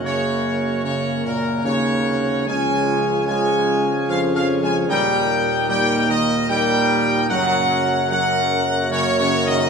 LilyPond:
<<
  \new Staff \with { instrumentName = "Trumpet section" } { \time 3/4 \key ges \lydian \tempo 4 = 74 des''4 des''8 bes'8 des''4 | aes''4 aes''4 \tuplet 3/2 { f''8 f''8 aes''8 } | g''4 g''8 ees''8 g''4 | ges''4 ges''4 \tuplet 3/2 { des''8 des''8 ees''8 } | }
  \new Staff \with { instrumentName = "Pipe organ" } { \time 3/4 \key ges \lydian <des bes ges'>2. | <des aes des' f'>2. | <bes, bes ees' bes'>2. | <des bes ges' bes'>2. | }
  \new Staff \with { instrumentName = "French horn section" } { \clef bass \time 3/4 \key ges \lydian << { bes4 bes4 bes8 c8 | des'4 des'4 des'4 | bes4 bes4 bes4 | bes2. | } \\ { des4 des4 des4 | f4 f4 f4 | ees4 ees4 ees4 | des2. | } >> }
  \new Staff \with { instrumentName = "Trombone section" } { \clef bass \time 3/4 \key ges \lydian des4 des8 bes,8 des4 | aes4 aes4 \tuplet 3/2 { f8 f8 aes8 } | g4 g8 ees8 g4 | ges4 ges4 \tuplet 3/2 { des8 des8 ees8 } | }
  \new Staff \with { instrumentName = "Tuba" } { \clef bass \time 3/4 \key ges \lydian ges,2 ees,4 | des,4. r8 f,4 | ees,2. | ges,2. | }
>>